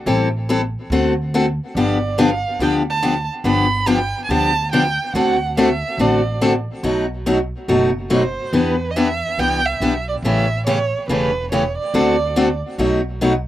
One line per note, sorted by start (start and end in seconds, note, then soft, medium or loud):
0.06 0.74 A1 medium
0.06 0.27 E3 medium
0.06 0.28 G3 medium
0.06 0.28 C4 medium
0.06 0.28 E4 medium
0.06 0.28 A4 medium
0.49 0.60 E3 medium
0.49 0.60 G3 medium
0.49 0.60 C4 medium
0.49 0.61 E4 medium
0.49 0.61 A4 medium
0.90 1.58 D2 medium
0.90 1.12 D3 medium
0.90 1.13 A3 medium
0.90 1.13 C4 medium
0.90 1.13 F#4 medium
0.90 1.13 A4 medium
1.34 1.45 D3 medium
1.34 1.45 A3 medium
1.34 1.45 C4 medium
1.34 1.45 F#4 medium
1.34 1.45 A4 medium
1.75 2.43 G1 medium
1.75 1.97 D3 medium
1.75 1.97 F3 medium
1.75 1.97 B3 medium
1.75 1.97 D4 medium
1.75 1.98 G4 medium
1.75 2.22 D5 medium
2.18 2.29 D3 medium
2.18 2.29 F3 medium
2.18 2.29 B3 medium
2.18 2.29 D4 medium
2.18 2.29 G4 medium
2.18 2.62 F5 medium
2.59 3.27 D2 medium
2.59 2.81 D3 medium
2.59 2.81 F3 medium
2.59 2.82 B3 medium
2.59 2.82 D4 medium
2.59 2.82 G4 medium
2.59 2.74 G5 medium
2.90 3.28 A5 medium
3.03 3.14 D3 medium
3.03 3.14 F3 medium
3.03 3.14 B3 medium
3.03 3.14 D4 medium
3.03 3.14 G4 medium
3.44 4.12 G1 medium
3.44 3.65 D3 medium
3.44 3.66 F3 medium
3.44 3.66 B3 medium
3.44 3.66 D4 medium
3.44 3.66 G4 medium
3.44 3.89 B5 medium
3.86 3.98 D3 medium
3.86 3.98 F3 medium
3.86 3.98 B3 medium
3.86 3.98 D4 medium
3.86 3.98 G4 medium
3.86 4.24 G5 medium
4.24 4.32 G#5 medium
4.29 4.97 D2 medium
4.29 4.50 D3 medium
4.29 4.51 F3 medium
4.29 4.51 B3 medium
4.29 4.51 D4 medium
4.29 4.51 G4 medium
4.29 4.72 A5 loud
4.72 4.83 D3 medium
4.72 4.83 F3 medium
4.72 4.84 B3 medium
4.72 4.84 D4 medium
4.72 4.84 G4 medium
4.72 5.11 G5 medium
5.14 5.82 D2 medium
5.14 5.35 D3 medium
5.14 5.36 A3 medium
5.14 5.36 C4 medium
5.14 5.36 F#4 medium
5.14 5.36 A4 medium
5.14 5.54 F#5 medium
5.57 5.68 D3 medium
5.57 5.68 A3 medium
5.57 5.68 C4 medium
5.57 5.69 F#4 medium
5.57 5.69 A4 medium
5.57 6.02 E5 medium
5.98 6.66 A1 medium
5.98 6.20 D3 medium
5.98 6.20 A3 medium
5.98 6.20 C4 medium
5.98 6.20 F#4 medium
5.98 6.21 A4 medium
5.98 6.42 D5 medium
6.41 6.52 D3 medium
6.41 6.53 A3 medium
6.41 6.52 C4 medium
6.41 6.53 F#4 medium
6.41 6.53 A4 medium
6.83 7.51 B1 medium
6.83 7.05 B2 medium
6.83 7.05 F#3 medium
6.83 7.05 A3 medium
6.83 7.05 D#4 medium
6.83 7.05 F#4 medium
7.26 7.37 B2 medium
7.26 7.37 F#3 medium
7.26 7.37 A3 medium
7.26 7.37 D#4 medium
7.26 7.38 F#4 medium
7.68 8.36 F#1 medium
7.68 7.89 B2 medium
7.68 7.90 F#3 medium
7.68 7.90 A3 medium
7.68 7.90 D#4 medium
7.68 7.90 F#4 medium
8.10 8.22 B2 medium
8.10 8.22 F#3 medium
8.10 8.22 A3 medium
8.10 8.22 D#4 medium
8.10 8.22 F#4 medium
8.10 8.56 C5 medium
8.53 9.21 E2 medium
8.53 8.74 E3 medium
8.53 8.74 B3 medium
8.53 8.75 D4 medium
8.53 8.75 G4 medium
8.53 8.92 B4 medium
8.91 8.98 D#5 medium
8.96 9.07 E3 medium
8.96 9.07 B3 medium
8.96 9.08 D4 medium
8.96 9.08 G4 medium
8.96 9.41 E5 medium
9.38 9.74 C2 medium
9.38 9.60 E3 medium
9.38 9.60 B3 medium
9.38 9.60 D4 medium
9.38 9.60 G4 medium
9.38 9.67 G5 loud
9.66 10.08 E5 medium
9.80 10.17 B1 medium
9.80 9.92 E3 medium
9.80 9.93 B3 medium
9.80 9.93 D4 medium
9.80 9.93 G4 medium
10.09 10.16 D5 medium
10.23 10.91 A1 medium
10.23 10.45 C#3 medium
10.23 10.45 E3 medium
10.23 10.45 A3 medium
10.23 10.46 C#4 medium
10.23 10.46 G4 medium
10.23 10.64 E5 medium
10.67 10.77 C#3 medium
10.67 10.78 E3 medium
10.67 10.78 A3 medium
10.67 10.78 C#4 medium
10.67 10.78 G4 medium
10.67 11.06 C#5 medium
11.08 11.76 E1 medium
11.08 11.30 C#3 medium
11.08 11.30 E3 medium
11.08 11.30 A3 medium
11.08 11.31 C#4 medium
11.08 11.31 G4 medium
11.08 11.49 B4 medium
11.52 11.63 C#3 medium
11.52 11.63 E3 medium
11.52 11.63 A3 medium
11.52 11.63 C#4 medium
11.52 11.63 G4 medium
11.52 11.76 C#5 medium
11.78 12.59 D5 medium
11.94 12.62 D2 medium
11.94 12.15 D3 medium
11.94 12.15 A3 medium
11.94 12.15 C4 medium
11.94 12.15 F#4 medium
11.94 12.15 A4 medium
12.36 12.47 D3 medium
12.36 12.47 A3 medium
12.36 12.47 C4 medium
12.36 12.48 F#4 medium
12.36 12.48 A4 medium
12.78 13.46 B1 medium
12.78 13.00 B2 medium
12.78 13.00 F#3 medium
12.78 13.00 A3 medium
12.78 13.00 D#4 medium
12.78 13.00 F#4 medium
13.21 13.32 B2 medium
13.21 13.32 F#3 medium
13.21 13.32 A3 medium
13.21 13.33 D#4 medium
13.21 13.33 F#4 medium